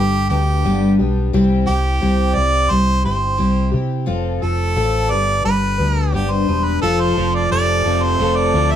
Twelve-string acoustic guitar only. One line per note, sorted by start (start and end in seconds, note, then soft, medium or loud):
0.00 0.29 G3 medium
0.00 0.30 B3 medium
0.00 0.30 D4 medium
0.00 0.29 G4 medium
0.30 0.64 G3 soft
0.30 0.64 B3 soft
0.30 0.64 D4 soft
0.30 0.64 G4 soft
0.64 0.99 G2 medium
0.64 0.99 D3 medium
0.64 0.99 G3 medium
0.64 0.99 B3 medium
0.64 0.99 D4 medium
0.64 0.98 G4 medium
0.99 1.32 G3 soft
0.99 1.34 B3 soft
0.99 1.34 D4 medium
0.99 1.33 G4 medium
1.33 1.67 C3 medium
1.33 1.68 G3 medium
1.33 1.68 C4 medium
1.33 1.67 E4 loud
1.33 1.66 G4 loud
1.68 2.01 C4 soft
1.68 2.01 E4 soft
1.68 2.01 G4 soft
2.01 2.36 C3 medium
2.01 2.36 G3 medium
2.01 2.36 C4 medium
2.01 2.36 E4 medium
2.01 2.34 G4 medium
2.36 2.69 C4 soft
2.36 2.70 E4 soft
2.36 2.70 G4 medium
2.70 3.05 G3 medium
2.70 3.05 C4 medium
2.70 3.04 E4 medium
2.70 3.03 G4 medium
3.04 3.37 C4 soft
3.04 3.37 E4 soft
3.04 3.37 G4 soft
3.37 3.73 C3 medium
3.37 3.73 G3 medium
3.37 3.73 C4 medium
3.37 3.72 E4 medium
3.37 3.70 G4 medium
3.72 4.05 C4 soft
3.72 4.06 E4 soft
3.72 4.07 G4 medium
4.06 4.41 F3 medium
4.06 4.42 C4 medium
4.06 4.41 F4 medium
4.06 4.41 A4 medium
4.42 4.75 C4 soft
4.42 4.75 F4 soft
4.42 4.76 A4 soft
4.75 5.10 F3 medium
4.75 5.11 C4 medium
4.75 5.10 F4 medium
4.75 5.10 A4 medium
5.10 5.42 G3 soft
5.10 5.43 B3 soft
5.10 5.44 D4 soft
5.10 5.44 B4 medium
5.44 5.78 G3 medium
5.44 5.78 B3 soft
5.44 5.78 D4 medium
5.44 5.77 B4 medium
5.78 6.12 G3 soft
5.78 6.12 B3 soft
5.78 6.13 D4 soft
5.78 6.13 B4 soft
6.13 6.48 G2 medium
6.13 6.48 D3 medium
6.13 6.48 G3 medium
6.13 6.48 B3 medium
6.13 6.47 D4 medium
6.13 6.47 B4 medium
6.48 6.82 G3 soft
6.48 6.83 B3 soft
6.48 6.83 D4 medium
6.48 6.83 B4 medium
6.82 7.17 F3 medium
6.82 7.17 C4 medium
6.82 7.16 F4 medium
6.82 7.15 A4 medium
7.16 7.50 C4 soft
7.16 7.51 F4 medium
7.16 7.51 A4 medium
7.50 7.85 F3 medium
7.50 7.86 C4 medium
7.50 7.86 F4 medium
7.50 7.84 A4 medium
7.86 8.19 C4 soft
7.86 8.20 F4 soft
7.86 8.20 A4 medium
8.20 8.54 F3 medium
8.20 8.54 C4 medium
8.20 8.54 F4 medium
8.20 8.54 A4 medium
8.55 8.76 C4 soft
8.55 8.76 F4 soft
8.55 8.76 A4 soft